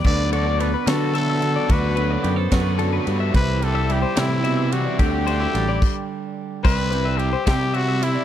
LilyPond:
<<
  \new Staff \with { instrumentName = "Clean electric guitar" } { \time 6/8 \key c \lydian \tempo 4. = 73 b'8 a'16 d''8 b'16 fis'8 e''16 e''8 d''16 | fis'8 b'16 d''8 c''16 b'8 a'16 b'8 e''16 | c''8 b'16 e''8 c''16 g'8 e''16 e''8 d''16 | g'8 c''16 e''8 d''16 r4. |
c''8 b'16 e''8 c''16 g'8 e''16 e''8 d''16 | }
  \new Staff \with { instrumentName = "Trumpet" } { \time 6/8 \key c \lydian d''8 d''8 b'8 a'8 a'4 | b'4 r2 | b'8 a'8 g'8 e'4 fis'8 | g'2 r4 |
b'4 g'8 g'8 fis'8 e'8 | }
  \new Staff \with { instrumentName = "Clean electric guitar" } { \time 6/8 \key c \lydian << { r8 fis'8 a'8 fis'4. | r8 fis'8 g'16 a'16 fis'4. | r8 g'8 e'2 | r8 d'16 e'16 d'16 e'16 r4. |
r2. | } \\ { d4 b4 d4 | d4 b4 d4 | c4 g8 a,8 b,8 c8 | d4 g2~ |
g4. r4. | } >> }
  \new Staff \with { instrumentName = "Overdriven electric guitar" } { \time 6/8 \key c \lydian <d fis b fis'>8 <d fis b fis'>8 r8 <d fis b fis'>8 <d fis b fis'>8 <d fis b fis'>8 | <d fis b fis'>8 <d fis b fis'>8 r8 <d fis b fis'>8 <d fis b fis'>8 <d fis b fis'>8 | <e g c' e'>8 <e g c' e'>8 r8 <e g c' e'>8 <e g c' e'>8 <e g c' e'>8 | <d a c' fis'>8 <d a c' fis'>8 r2 |
<c g c' e'>8 <c g c' e'>8 r8 <c g c' e'>8 <c g c' e'>8 <c g c' e'>8 | }
  \new Staff \with { instrumentName = "Fingered electric bass" } { \clef bass \time 6/8 \key c \lydian d,4. d4. | d,4 fis,8 fis,4 g,8 | c,4. c4. | d,4 a,,8 r4. |
c,4. c4. | }
  \new DrumStaff \with { instrumentName = "Drums" } \drummode { \time 6/8 <cymc bd>8 cymr8 cymr8 <cymr sn>8 cymr8 cymr8 | <bd cymr>8 cymr8 cymr8 <bd cymr sn>8 cymr8 cymr8 | <bd cymr>8 cymr8 cymr8 <cymr sn>8 cymr8 cymr8 | <bd cymr>8 cymr8 cymr8 <cymc bd>4. |
<cymc bd>8 cymr8 cymr8 <bd cymr sn>8 cymr8 cymr8 | }
>>